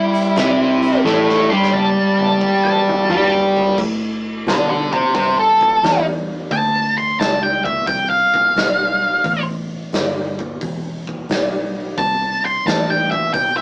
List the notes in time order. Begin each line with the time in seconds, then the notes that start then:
Already playing: G2 G3 E4 G4
0.13 closed hi-hat
0.36 C2 C3 C4, snare, closed hi-hat
0.82 closed hi-hat
1.05 A1 A2 A3, snare
1.29 snare
1.50 G2 G3 G4 C6
1.63 snare
1.72 A5, high tom
2.19 A5, high tom
2.30 mid tom
2.41 kick
2.65 A5, mid tom
2.88 mid tom
3.09 G2 G3 G4, mid tom
3.33 floor tom
3.56 floor tom
3.67 floor tom
3.78 A2, kick, crash
4.47 B2 A4 D5, snare, open hi-hat
4.69 A4 D5
4.92 G4 C5, kick
5.15 G2 G4 C5, kick, open hi-hat
5.39 A4
5.61 kick
5.83 E2, snare, open hi-hat
6.51 D2 A5, kick, open hi-hat
6.98 C6
7.19 C#2 A5, snare, open hi-hat
7.43 G5
7.65 E5, kick
7.87 C2 G5, kick, open hi-hat
8.10 F5
8.34 kick
8.56 B1, snare, open hi-hat
9.24 A1, kick, open hi-hat
9.92 G1, snare, open hi-hat
10.39 kick
10.61 E1, kick, open hi-hat
11.07 kick
11.29 B1, snare, open hi-hat
11.98 C2 A5, kick, open hi-hat
12.45 C6
12.66 A1 A5, snare, open hi-hat
12.90 G5
13.11 E5, kick
13.34 B1 G5, kick, open hi-hat
13.57 E5